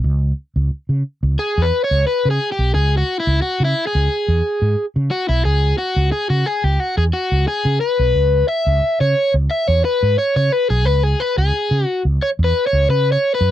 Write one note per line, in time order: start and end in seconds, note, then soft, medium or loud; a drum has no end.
0.04 0.31 C#2 loud
0.56 0.69 C#2 medium
0.71 muted fretless electric bass stroke soft
0.89 1.02 C#3 medium
1.23 1.36 C#2 medium
1.39 1.62 G#4 loud
1.58 1.70 E2 loud
1.62 1.84 B4 medium
1.84 2.07 C#5 medium
1.91 2.04 C#2 medium
2.07 2.28 B4 medium
2.25 2.38 C#3 loud
2.30 2.52 G#4 medium
2.52 2.74 G4 medium
2.59 2.72 B1 medium
2.74 3.02 C#2 loud
2.74 2.97 G#4 medium
2.97 3.18 F#4 medium
3.20 3.41 E4 medium
3.27 3.40 C#2 medium
3.42 3.64 F#4 medium
3.42 muted fretless electric bass stroke soft
3.60 3.73 C#3 medium
3.65 3.87 E4 medium
3.87 4.85 G#4 medium
3.95 4.07 C#2 medium
4.28 4.41 E2 medium
4.62 4.74 G#2 medium
4.96 5.09 C#3 loud
5.11 5.28 F#4 medium
5.29 5.42 B1 medium
5.29 5.44 E4 medium
5.45 5.72 C#2 loud
5.45 5.78 G#4 loud
5.78 6.10 F#4 medium
5.96 6.09 C#2 medium
6.12 6.29 G#4 loud
6.30 6.43 C#3 medium
6.30 6.46 F#4 loud
6.46 6.64 G#4 medium
6.64 6.77 C#2 medium
6.64 6.80 G4 medium
6.80 6.97 F#4 medium
6.97 7.11 E2 medium
6.97 7.03 G#4 medium
7.13 7.47 F#4 medium
7.32 7.45 C#2 medium
7.48 7.80 G#4 loud
7.65 7.78 C#3 loud
7.81 8.45 B4 loud
7.99 8.12 B1 medium
8.15 8.42 C#2 loud
8.48 9.01 E5 loud
8.67 8.80 C#2 loud
9.00 9.14 C#3 medium
9.00 9.33 C#5 loud
9.34 9.47 C#2 medium
9.51 9.68 E5 loud
9.68 9.81 E2 loud
9.68 9.84 C#5 loud
9.85 10.18 B4 loud
10.03 10.15 G#2 medium
10.18 10.35 C#5 medium
10.36 10.49 C#3 medium
10.36 10.52 C#5 loud
10.52 10.70 B4 loud
10.70 10.86 B1 medium
10.70 10.85 G#4 medium
10.85 11.14 C#2 loud
10.85 11.03 B4 loud
11.03 11.20 G#4 medium
11.20 11.38 B4 loud
11.38 11.51 C#2 medium
11.38 11.86 G#4 medium
11.71 11.84 C#3 medium
11.86 12.02 F#4 medium
12.05 12.18 C#2 medium
12.22 12.28 C#5 loud
12.39 12.52 E2 loud
12.44 12.67 B4 medium
12.67 12.90 C#5 loud
12.73 12.86 C#2 medium
12.89 13.16 C#3 loud
12.89 13.12 B4 loud
13.12 13.33 C#5 loud
13.35 13.51 B4 medium
13.41 13.51 F#2 medium